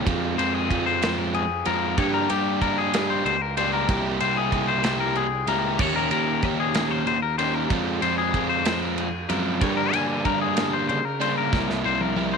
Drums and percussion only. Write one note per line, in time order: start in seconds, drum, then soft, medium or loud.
0.07 kick loud
0.07 ride loud
0.39 ride medium
0.71 kick medium
0.71 ride medium
1.02 snare loud
1.02 ride loud
1.34 ride medium
1.65 ride medium
1.98 kick loud
1.98 ride loud
2.30 ride medium
2.62 kick medium
2.62 ride medium
2.94 snare loud
2.94 ride loud
3.26 ride medium
3.57 ride medium
3.89 kick loud
3.89 ride loud
4.20 ride medium
4.52 kick medium
4.52 ride medium
4.84 snare loud
4.84 ride loud
5.16 ride medium
5.47 ride medium
5.79 kick loud
5.79 crash loud
6.11 ride medium
6.42 kick medium
6.42 ride medium
6.74 snare loud
6.74 ride loud
7.07 ride medium
7.39 ride medium
7.70 kick loud
7.70 ride loud
8.02 ride medium
8.34 kick medium
8.34 ride medium
8.65 snare loud
8.65 ride loud
8.98 ride medium
9.30 ride medium
9.61 kick loud
9.61 ride loud
9.93 ride medium
10.25 kick medium
10.25 ride medium
10.57 snare loud
10.57 ride loud
10.89 ride medium
11.21 ride medium
11.53 kick loud
11.53 snare medium
11.70 snare medium
12.01 high tom medium
12.16 high tom medium